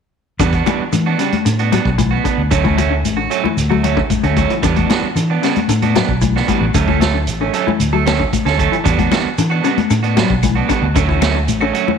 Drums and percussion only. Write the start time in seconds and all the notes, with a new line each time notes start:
0.39 kick, closed hi-hat, shekere
0.53 kick, closed hi-hat
0.66 closed hi-hat, high conga, shekere
0.93 closed hi-hat, high conga, shekere
1.19 closed hi-hat, shekere
1.32 closed hi-hat, high conga
1.46 closed hi-hat, shekere
1.59 closed hi-hat
1.73 closed hi-hat, high conga, shekere
1.85 kick
1.98 kick, closed hi-hat, high conga, shekere
2.25 kick, closed hi-hat, shekere
2.51 kick, closed hi-hat, shekere
2.65 kick, high conga
2.78 closed hi-hat, high conga, shekere
3.05 closed hi-hat, high conga, shekere
3.31 closed hi-hat, shekere
3.45 high conga
3.58 closed hi-hat, shekere
3.72 high conga
3.84 closed hi-hat, high conga, shekere
3.97 kick
4.10 kick, closed hi-hat, high conga, shekere
4.23 closed hi-hat
4.36 kick, closed hi-hat, high conga, shekere
4.50 closed hi-hat
4.63 kick, closed hi-hat, shekere
4.76 kick, closed hi-hat, high conga
4.89 snare, closed hi-hat, high conga, shekere
5.16 closed hi-hat, shekere
5.43 snare, closed hi-hat, shekere
5.56 closed hi-hat, high conga
5.69 closed hi-hat, shekere
5.82 closed hi-hat, high conga
5.95 snare, closed hi-hat, high conga, shekere
6.09 kick
6.21 kick, closed hi-hat, high conga, shekere
6.36 snare
6.48 kick, closed hi-hat, high conga, shekere
6.74 kick, closed hi-hat, shekere
6.88 kick, high conga
7.01 snare, closed hi-hat, high conga, shekere
7.27 closed hi-hat, shekere
7.53 closed hi-hat, shekere
7.68 high conga
7.80 closed hi-hat, shekere
8.06 snare, closed hi-hat, high conga, shekere
8.20 kick
8.33 kick, closed hi-hat, high conga, shekere
8.46 snare, closed hi-hat
8.59 kick, closed hi-hat, shekere
8.73 closed hi-hat
8.86 kick, closed hi-hat, shekere
8.99 kick, closed hi-hat, high conga
9.12 snare, closed hi-hat, high conga, claves, shekere
9.38 closed hi-hat, shekere
9.51 claves
9.64 closed hi-hat, shekere
9.78 closed hi-hat, high conga
9.90 closed hi-hat, claves, shekere
10.04 closed hi-hat
10.17 snare, closed hi-hat, high conga, shekere
10.30 kick
10.43 kick, closed hi-hat, high conga, claves, shekere
10.69 kick, closed hi-hat, claves, shekere
10.96 kick, closed hi-hat, shekere
11.09 kick
11.21 snare, closed hi-hat, high conga, claves, shekere
11.48 closed hi-hat, high conga, shekere
11.61 claves
11.74 closed hi-hat, shekere
11.88 high conga